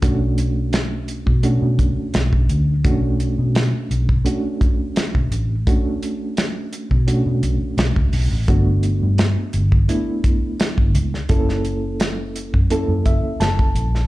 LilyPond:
<<
  \new Staff \with { instrumentName = "Reed electric piano" } { \time 4/4 \key b \minor \tempo 4 = 85 << { r1 | r1 | r1 | r1 |
r2 r8 e''8 a''4 | } \\ { <a cis' d' fis'>2 <a cis' d' fis'>2 | <a cis' d' fis'>2 <a cis' d' fis'>2 | <a cis' d' fis'>2 <a cis' d' fis'>2 | <a b d' fis'>2 <a b d' e'>2 |
<ais cis' e' a'>2 <ais cis' e' a'>2 | } >> }
  \new Staff \with { instrumentName = "Fingered electric bass" } { \clef bass \time 4/4 \key b \minor b,,4.~ b,,16 b,8 b,16 b,,16 r16 b,,8 d,8 | b,,8. b,8 r16 b,,8 r4 r16 b,,16 a,,8 | r4. r16 b,8 b,16 b,,16 r16 b,,16 cis,16 b,,16 a,,16 | g,,8. g,8 r16 g,,8 r4 r16 g,,16 cis,16 r16 |
fis,,4.~ fis,,16 fis,8 fis,16 fis,,16 r16 fis,,8 ais,,8 | }
  \new DrumStaff \with { instrumentName = "Drums" } \drummode { \time 4/4 <hh bd>8 hh8 <hh sn>8 hh16 bd16 hh8 <hh bd>8 <hh sn>16 bd16 hh8 | <hh bd>8 hh8 <hh sn>8 hh16 bd16 hh8 <hh bd>8 <hh sn>16 bd16 hh8 | <hh bd>8 hh8 <hh sn>8 hh16 bd16 hh8 hh8 <hh sn>16 bd16 hho8 | <hh bd>8 hh8 <hh sn>8 hh16 bd16 hh8 <hh bd>8 <hh sn>16 bd16 hh16 sn16 |
<hh bd>16 sn16 hh8 <hh sn>8 hh16 bd16 hh8 <hh bd>8 <hh sn>16 bd16 hh16 sn16 | }
>>